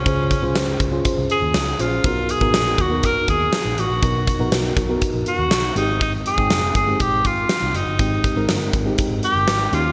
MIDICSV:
0, 0, Header, 1, 5, 480
1, 0, Start_track
1, 0, Tempo, 495868
1, 57, Time_signature, 4, 2, 24, 8
1, 9604, End_track
2, 0, Start_track
2, 0, Title_t, "Alto saxophone"
2, 0, Program_c, 0, 65
2, 0, Note_on_c, 0, 61, 75
2, 541, Note_off_c, 0, 61, 0
2, 1269, Note_on_c, 0, 68, 87
2, 1751, Note_on_c, 0, 65, 73
2, 1766, Note_off_c, 0, 68, 0
2, 1984, Note_off_c, 0, 65, 0
2, 1992, Note_on_c, 0, 65, 84
2, 2232, Note_on_c, 0, 68, 96
2, 2247, Note_off_c, 0, 65, 0
2, 2714, Note_on_c, 0, 66, 88
2, 2729, Note_off_c, 0, 68, 0
2, 2952, Note_on_c, 0, 70, 98
2, 2967, Note_off_c, 0, 66, 0
2, 3185, Note_off_c, 0, 70, 0
2, 3189, Note_on_c, 0, 68, 93
2, 3670, Note_on_c, 0, 66, 84
2, 3685, Note_off_c, 0, 68, 0
2, 4384, Note_off_c, 0, 66, 0
2, 5110, Note_on_c, 0, 66, 88
2, 5551, Note_off_c, 0, 66, 0
2, 5590, Note_on_c, 0, 63, 77
2, 5807, Note_off_c, 0, 63, 0
2, 5826, Note_on_c, 0, 63, 83
2, 5932, Note_off_c, 0, 63, 0
2, 6068, Note_on_c, 0, 68, 101
2, 6510, Note_off_c, 0, 68, 0
2, 6545, Note_on_c, 0, 68, 91
2, 6787, Note_on_c, 0, 67, 96
2, 6802, Note_off_c, 0, 68, 0
2, 7027, Note_on_c, 0, 65, 89
2, 7042, Note_off_c, 0, 67, 0
2, 7507, Note_on_c, 0, 63, 74
2, 7521, Note_off_c, 0, 65, 0
2, 8222, Note_off_c, 0, 63, 0
2, 8949, Note_on_c, 0, 67, 103
2, 9426, Note_on_c, 0, 65, 88
2, 9440, Note_off_c, 0, 67, 0
2, 9604, Note_off_c, 0, 65, 0
2, 9604, End_track
3, 0, Start_track
3, 0, Title_t, "FM electric piano"
3, 0, Program_c, 1, 5
3, 0, Control_c, 1, 64, 127
3, 0, Note_on_c, 1, 49, 55
3, 0, Note_on_c, 1, 61, 63
3, 0, Note_on_c, 1, 65, 61
3, 0, Note_on_c, 1, 68, 62
3, 0, Note_on_c, 1, 72, 74
3, 50, Note_off_c, 1, 61, 0
3, 50, Note_on_c, 1, 61, 64
3, 55, Note_off_c, 1, 65, 0
3, 55, Note_on_c, 1, 65, 63
3, 57, Note_off_c, 1, 49, 0
3, 57, Note_on_c, 1, 49, 57
3, 58, Note_off_c, 1, 68, 0
3, 58, Note_on_c, 1, 68, 61
3, 63, Note_off_c, 1, 72, 0
3, 63, Note_on_c, 1, 72, 72
3, 307, Note_off_c, 1, 61, 0
3, 309, Note_off_c, 1, 65, 0
3, 311, Note_off_c, 1, 68, 0
3, 313, Note_off_c, 1, 72, 0
3, 411, Note_on_c, 1, 61, 76
3, 415, Note_on_c, 1, 65, 70
3, 419, Note_on_c, 1, 68, 69
3, 422, Note_on_c, 1, 72, 84
3, 738, Note_off_c, 1, 49, 0
3, 752, Note_off_c, 1, 61, 0
3, 754, Note_off_c, 1, 65, 0
3, 755, Note_off_c, 1, 68, 0
3, 757, Note_off_c, 1, 72, 0
3, 891, Note_on_c, 1, 61, 82
3, 895, Note_on_c, 1, 65, 72
3, 899, Note_on_c, 1, 68, 71
3, 903, Note_on_c, 1, 72, 86
3, 1485, Note_off_c, 1, 61, 0
3, 1487, Note_off_c, 1, 65, 0
3, 1489, Note_off_c, 1, 68, 0
3, 1491, Note_off_c, 1, 72, 0
3, 1731, Note_on_c, 1, 61, 68
3, 1735, Note_on_c, 1, 65, 58
3, 1739, Note_on_c, 1, 68, 59
3, 1743, Note_on_c, 1, 72, 70
3, 1903, Note_off_c, 1, 61, 0
3, 1905, Note_off_c, 1, 65, 0
3, 1907, Note_off_c, 1, 68, 0
3, 1909, Note_off_c, 1, 72, 0
3, 1972, Note_on_c, 1, 59, 67
3, 1976, Note_on_c, 1, 63, 63
3, 1978, Note_on_c, 1, 47, 58
3, 1980, Note_on_c, 1, 66, 60
3, 1984, Note_on_c, 1, 70, 71
3, 1992, Control_c, 1, 64, 0
3, 2143, Control_c, 1, 64, 127
3, 2228, Note_off_c, 1, 59, 0
3, 2230, Note_off_c, 1, 63, 0
3, 2232, Note_off_c, 1, 66, 0
3, 2233, Note_off_c, 1, 70, 0
3, 2331, Note_on_c, 1, 59, 72
3, 2335, Note_on_c, 1, 63, 59
3, 2338, Note_on_c, 1, 66, 58
3, 2341, Note_on_c, 1, 70, 74
3, 2659, Note_off_c, 1, 47, 0
3, 2671, Note_off_c, 1, 59, 0
3, 2673, Note_off_c, 1, 63, 0
3, 2675, Note_off_c, 1, 66, 0
3, 2677, Note_off_c, 1, 70, 0
3, 2810, Note_on_c, 1, 59, 67
3, 2814, Note_on_c, 1, 63, 60
3, 2817, Note_on_c, 1, 66, 63
3, 2822, Note_on_c, 1, 70, 70
3, 3489, Note_off_c, 1, 59, 0
3, 3491, Note_off_c, 1, 63, 0
3, 3492, Note_off_c, 1, 66, 0
3, 3495, Note_off_c, 1, 70, 0
3, 3890, Note_on_c, 1, 59, 67
3, 3895, Note_on_c, 1, 63, 60
3, 3897, Note_on_c, 1, 47, 58
3, 3899, Note_on_c, 1, 66, 62
3, 3903, Note_on_c, 1, 70, 73
3, 4147, Note_off_c, 1, 59, 0
3, 4149, Note_off_c, 1, 63, 0
3, 4151, Note_off_c, 1, 66, 0
3, 4153, Note_off_c, 1, 70, 0
3, 4252, Note_on_c, 1, 59, 80
3, 4255, Note_on_c, 1, 63, 73
3, 4259, Note_on_c, 1, 66, 72
3, 4263, Note_on_c, 1, 70, 90
3, 4578, Note_off_c, 1, 47, 0
3, 4592, Note_off_c, 1, 59, 0
3, 4594, Note_off_c, 1, 63, 0
3, 4595, Note_off_c, 1, 66, 0
3, 4597, Note_off_c, 1, 70, 0
3, 4733, Note_on_c, 1, 59, 76
3, 4737, Note_on_c, 1, 63, 71
3, 4740, Note_on_c, 1, 66, 71
3, 4745, Note_on_c, 1, 70, 85
3, 5325, Note_off_c, 1, 59, 0
3, 5327, Note_off_c, 1, 63, 0
3, 5329, Note_off_c, 1, 66, 0
3, 5331, Note_off_c, 1, 70, 0
3, 5573, Note_on_c, 1, 56, 65
3, 5576, Note_on_c, 1, 60, 60
3, 5579, Note_on_c, 1, 44, 54
3, 5580, Note_on_c, 1, 63, 60
3, 5583, Note_on_c, 1, 67, 76
3, 5590, Control_c, 1, 64, 0
3, 5771, Control_c, 1, 64, 127
3, 6055, Note_off_c, 1, 56, 0
3, 6057, Note_off_c, 1, 60, 0
3, 6059, Note_off_c, 1, 63, 0
3, 6060, Note_off_c, 1, 67, 0
3, 6172, Note_on_c, 1, 56, 68
3, 6176, Note_on_c, 1, 60, 60
3, 6179, Note_on_c, 1, 63, 60
3, 6184, Note_on_c, 1, 79, 72
3, 6259, Note_off_c, 1, 44, 0
3, 6512, Note_off_c, 1, 56, 0
3, 6514, Note_off_c, 1, 60, 0
3, 6516, Note_off_c, 1, 63, 0
3, 6518, Note_off_c, 1, 79, 0
3, 6652, Note_on_c, 1, 56, 67
3, 6655, Note_on_c, 1, 60, 62
3, 6660, Note_on_c, 1, 63, 58
3, 6664, Note_on_c, 1, 67, 70
3, 7330, Note_off_c, 1, 56, 0
3, 7331, Note_off_c, 1, 60, 0
3, 7334, Note_off_c, 1, 63, 0
3, 7335, Note_off_c, 1, 67, 0
3, 7498, Note_on_c, 1, 44, 56
3, 7733, Note_on_c, 1, 56, 66
3, 7737, Note_on_c, 1, 60, 61
3, 7742, Note_on_c, 1, 63, 62
3, 7745, Note_on_c, 1, 67, 74
3, 7988, Note_off_c, 1, 56, 0
3, 7990, Note_off_c, 1, 60, 0
3, 7992, Note_off_c, 1, 63, 0
3, 7994, Note_off_c, 1, 67, 0
3, 8093, Note_on_c, 1, 56, 78
3, 8096, Note_on_c, 1, 60, 72
3, 8099, Note_on_c, 1, 63, 69
3, 8104, Note_on_c, 1, 70, 89
3, 8179, Note_off_c, 1, 44, 0
3, 8432, Note_off_c, 1, 56, 0
3, 8434, Note_off_c, 1, 60, 0
3, 8436, Note_off_c, 1, 63, 0
3, 8438, Note_off_c, 1, 70, 0
3, 8571, Note_on_c, 1, 56, 82
3, 8575, Note_on_c, 1, 60, 74
3, 8578, Note_on_c, 1, 63, 73
3, 8582, Note_on_c, 1, 67, 83
3, 9165, Note_off_c, 1, 56, 0
3, 9167, Note_off_c, 1, 60, 0
3, 9168, Note_off_c, 1, 63, 0
3, 9170, Note_off_c, 1, 67, 0
3, 9411, Note_on_c, 1, 58, 65
3, 9415, Note_on_c, 1, 61, 68
3, 9416, Note_on_c, 1, 51, 57
3, 9418, Note_on_c, 1, 63, 62
3, 9423, Note_on_c, 1, 67, 75
3, 9431, Control_c, 1, 64, 0
3, 9595, Control_c, 1, 64, 127
3, 9604, Note_off_c, 1, 51, 0
3, 9604, Note_off_c, 1, 58, 0
3, 9604, Note_off_c, 1, 61, 0
3, 9604, Note_off_c, 1, 63, 0
3, 9604, Note_off_c, 1, 67, 0
3, 9604, End_track
4, 0, Start_track
4, 0, Title_t, "Picked electric bass"
4, 0, Program_c, 2, 34
4, 56, Note_on_c, 2, 37, 89
4, 327, Note_off_c, 2, 37, 0
4, 415, Note_on_c, 2, 36, 75
4, 506, Note_off_c, 2, 36, 0
4, 536, Note_on_c, 2, 37, 76
4, 716, Note_off_c, 2, 37, 0
4, 774, Note_on_c, 2, 37, 84
4, 955, Note_off_c, 2, 37, 0
4, 1137, Note_on_c, 2, 36, 89
4, 1227, Note_off_c, 2, 36, 0
4, 1376, Note_on_c, 2, 39, 71
4, 1466, Note_off_c, 2, 39, 0
4, 1496, Note_on_c, 2, 37, 84
4, 1676, Note_off_c, 2, 37, 0
4, 1736, Note_on_c, 2, 34, 84
4, 1916, Note_off_c, 2, 34, 0
4, 1978, Note_on_c, 2, 35, 94
4, 2248, Note_off_c, 2, 35, 0
4, 2335, Note_on_c, 2, 32, 77
4, 2426, Note_off_c, 2, 32, 0
4, 2455, Note_on_c, 2, 34, 84
4, 2636, Note_off_c, 2, 34, 0
4, 2694, Note_on_c, 2, 39, 83
4, 2938, Note_off_c, 2, 39, 0
4, 2938, Note_on_c, 2, 35, 80
4, 3117, Note_off_c, 2, 35, 0
4, 3176, Note_on_c, 2, 39, 86
4, 3357, Note_off_c, 2, 39, 0
4, 3537, Note_on_c, 2, 34, 77
4, 3627, Note_off_c, 2, 34, 0
4, 3655, Note_on_c, 2, 33, 78
4, 3746, Note_off_c, 2, 33, 0
4, 3775, Note_on_c, 2, 34, 83
4, 3866, Note_off_c, 2, 34, 0
4, 3898, Note_on_c, 2, 35, 94
4, 4167, Note_off_c, 2, 35, 0
4, 4256, Note_on_c, 2, 34, 81
4, 4346, Note_off_c, 2, 34, 0
4, 4376, Note_on_c, 2, 35, 87
4, 4556, Note_off_c, 2, 35, 0
4, 4614, Note_on_c, 2, 35, 82
4, 4795, Note_off_c, 2, 35, 0
4, 4976, Note_on_c, 2, 34, 83
4, 5067, Note_off_c, 2, 34, 0
4, 5216, Note_on_c, 2, 39, 76
4, 5335, Note_off_c, 2, 39, 0
4, 5335, Note_on_c, 2, 35, 80
4, 5516, Note_off_c, 2, 35, 0
4, 5573, Note_on_c, 2, 32, 88
4, 6025, Note_off_c, 2, 32, 0
4, 6174, Note_on_c, 2, 32, 79
4, 6265, Note_off_c, 2, 32, 0
4, 6297, Note_on_c, 2, 29, 83
4, 6477, Note_off_c, 2, 29, 0
4, 6535, Note_on_c, 2, 31, 81
4, 6716, Note_off_c, 2, 31, 0
4, 6778, Note_on_c, 2, 34, 90
4, 7017, Note_off_c, 2, 34, 0
4, 7017, Note_on_c, 2, 32, 82
4, 7197, Note_off_c, 2, 32, 0
4, 7379, Note_on_c, 2, 36, 77
4, 7469, Note_off_c, 2, 36, 0
4, 7498, Note_on_c, 2, 30, 89
4, 7588, Note_off_c, 2, 30, 0
4, 7618, Note_on_c, 2, 31, 76
4, 7708, Note_off_c, 2, 31, 0
4, 7738, Note_on_c, 2, 32, 87
4, 8008, Note_off_c, 2, 32, 0
4, 8100, Note_on_c, 2, 32, 83
4, 8189, Note_off_c, 2, 32, 0
4, 8219, Note_on_c, 2, 31, 76
4, 8398, Note_off_c, 2, 31, 0
4, 8454, Note_on_c, 2, 32, 88
4, 8635, Note_off_c, 2, 32, 0
4, 8816, Note_on_c, 2, 32, 82
4, 8906, Note_off_c, 2, 32, 0
4, 9056, Note_on_c, 2, 31, 79
4, 9146, Note_off_c, 2, 31, 0
4, 9174, Note_on_c, 2, 32, 91
4, 9355, Note_off_c, 2, 32, 0
4, 9415, Note_on_c, 2, 39, 103
4, 9604, Note_off_c, 2, 39, 0
4, 9604, End_track
5, 0, Start_track
5, 0, Title_t, "Drums"
5, 57, Note_on_c, 9, 36, 104
5, 57, Note_on_c, 9, 42, 71
5, 154, Note_off_c, 9, 36, 0
5, 154, Note_off_c, 9, 42, 0
5, 297, Note_on_c, 9, 42, 67
5, 298, Note_on_c, 9, 36, 81
5, 394, Note_off_c, 9, 42, 0
5, 395, Note_off_c, 9, 36, 0
5, 536, Note_on_c, 9, 42, 76
5, 537, Note_on_c, 9, 38, 101
5, 633, Note_off_c, 9, 42, 0
5, 634, Note_off_c, 9, 38, 0
5, 775, Note_on_c, 9, 36, 85
5, 779, Note_on_c, 9, 42, 58
5, 872, Note_off_c, 9, 36, 0
5, 876, Note_off_c, 9, 42, 0
5, 1015, Note_on_c, 9, 42, 83
5, 1019, Note_on_c, 9, 36, 86
5, 1112, Note_off_c, 9, 42, 0
5, 1116, Note_off_c, 9, 36, 0
5, 1256, Note_on_c, 9, 42, 57
5, 1352, Note_off_c, 9, 42, 0
5, 1494, Note_on_c, 9, 38, 106
5, 1496, Note_on_c, 9, 42, 86
5, 1591, Note_off_c, 9, 38, 0
5, 1593, Note_off_c, 9, 42, 0
5, 1737, Note_on_c, 9, 42, 67
5, 1834, Note_off_c, 9, 42, 0
5, 1977, Note_on_c, 9, 36, 102
5, 1977, Note_on_c, 9, 42, 69
5, 2074, Note_off_c, 9, 36, 0
5, 2074, Note_off_c, 9, 42, 0
5, 2216, Note_on_c, 9, 42, 67
5, 2313, Note_off_c, 9, 42, 0
5, 2335, Note_on_c, 9, 36, 79
5, 2431, Note_off_c, 9, 36, 0
5, 2457, Note_on_c, 9, 42, 80
5, 2458, Note_on_c, 9, 38, 108
5, 2553, Note_off_c, 9, 42, 0
5, 2555, Note_off_c, 9, 38, 0
5, 2694, Note_on_c, 9, 36, 85
5, 2698, Note_on_c, 9, 42, 56
5, 2791, Note_off_c, 9, 36, 0
5, 2795, Note_off_c, 9, 42, 0
5, 2934, Note_on_c, 9, 42, 84
5, 2938, Note_on_c, 9, 36, 88
5, 3031, Note_off_c, 9, 42, 0
5, 3035, Note_off_c, 9, 36, 0
5, 3175, Note_on_c, 9, 42, 59
5, 3177, Note_on_c, 9, 36, 78
5, 3271, Note_off_c, 9, 42, 0
5, 3274, Note_off_c, 9, 36, 0
5, 3414, Note_on_c, 9, 38, 102
5, 3416, Note_on_c, 9, 42, 84
5, 3510, Note_off_c, 9, 38, 0
5, 3512, Note_off_c, 9, 42, 0
5, 3657, Note_on_c, 9, 42, 64
5, 3754, Note_off_c, 9, 42, 0
5, 3897, Note_on_c, 9, 36, 98
5, 3897, Note_on_c, 9, 42, 72
5, 3994, Note_off_c, 9, 36, 0
5, 3994, Note_off_c, 9, 42, 0
5, 4137, Note_on_c, 9, 42, 72
5, 4138, Note_on_c, 9, 36, 86
5, 4233, Note_off_c, 9, 42, 0
5, 4235, Note_off_c, 9, 36, 0
5, 4375, Note_on_c, 9, 42, 79
5, 4377, Note_on_c, 9, 38, 103
5, 4472, Note_off_c, 9, 42, 0
5, 4473, Note_off_c, 9, 38, 0
5, 4614, Note_on_c, 9, 36, 90
5, 4617, Note_on_c, 9, 42, 59
5, 4711, Note_off_c, 9, 36, 0
5, 4714, Note_off_c, 9, 42, 0
5, 4855, Note_on_c, 9, 42, 85
5, 4858, Note_on_c, 9, 36, 85
5, 4952, Note_off_c, 9, 42, 0
5, 4955, Note_off_c, 9, 36, 0
5, 5094, Note_on_c, 9, 42, 59
5, 5190, Note_off_c, 9, 42, 0
5, 5334, Note_on_c, 9, 38, 100
5, 5336, Note_on_c, 9, 42, 93
5, 5430, Note_off_c, 9, 38, 0
5, 5433, Note_off_c, 9, 42, 0
5, 5577, Note_on_c, 9, 42, 66
5, 5674, Note_off_c, 9, 42, 0
5, 5817, Note_on_c, 9, 36, 98
5, 5817, Note_on_c, 9, 42, 68
5, 5914, Note_off_c, 9, 36, 0
5, 5914, Note_off_c, 9, 42, 0
5, 6057, Note_on_c, 9, 42, 68
5, 6154, Note_off_c, 9, 42, 0
5, 6175, Note_on_c, 9, 36, 77
5, 6271, Note_off_c, 9, 36, 0
5, 6295, Note_on_c, 9, 42, 78
5, 6297, Note_on_c, 9, 38, 104
5, 6392, Note_off_c, 9, 42, 0
5, 6393, Note_off_c, 9, 38, 0
5, 6534, Note_on_c, 9, 36, 88
5, 6538, Note_on_c, 9, 42, 58
5, 6631, Note_off_c, 9, 36, 0
5, 6635, Note_off_c, 9, 42, 0
5, 6774, Note_on_c, 9, 42, 81
5, 6778, Note_on_c, 9, 36, 89
5, 6871, Note_off_c, 9, 42, 0
5, 6875, Note_off_c, 9, 36, 0
5, 7014, Note_on_c, 9, 42, 62
5, 7017, Note_on_c, 9, 36, 76
5, 7111, Note_off_c, 9, 42, 0
5, 7114, Note_off_c, 9, 36, 0
5, 7254, Note_on_c, 9, 38, 108
5, 7256, Note_on_c, 9, 42, 91
5, 7351, Note_off_c, 9, 38, 0
5, 7353, Note_off_c, 9, 42, 0
5, 7497, Note_on_c, 9, 42, 65
5, 7594, Note_off_c, 9, 42, 0
5, 7736, Note_on_c, 9, 42, 70
5, 7738, Note_on_c, 9, 36, 103
5, 7833, Note_off_c, 9, 42, 0
5, 7834, Note_off_c, 9, 36, 0
5, 7977, Note_on_c, 9, 42, 70
5, 7978, Note_on_c, 9, 36, 84
5, 8074, Note_off_c, 9, 42, 0
5, 8075, Note_off_c, 9, 36, 0
5, 8215, Note_on_c, 9, 42, 79
5, 8216, Note_on_c, 9, 38, 106
5, 8311, Note_off_c, 9, 42, 0
5, 8313, Note_off_c, 9, 38, 0
5, 8455, Note_on_c, 9, 36, 86
5, 8459, Note_on_c, 9, 42, 57
5, 8552, Note_off_c, 9, 36, 0
5, 8555, Note_off_c, 9, 42, 0
5, 8693, Note_on_c, 9, 42, 82
5, 8698, Note_on_c, 9, 36, 88
5, 8790, Note_off_c, 9, 42, 0
5, 8795, Note_off_c, 9, 36, 0
5, 8934, Note_on_c, 9, 42, 62
5, 9030, Note_off_c, 9, 42, 0
5, 9173, Note_on_c, 9, 38, 109
5, 9175, Note_on_c, 9, 42, 90
5, 9270, Note_off_c, 9, 38, 0
5, 9272, Note_off_c, 9, 42, 0
5, 9417, Note_on_c, 9, 42, 65
5, 9513, Note_off_c, 9, 42, 0
5, 9604, End_track
0, 0, End_of_file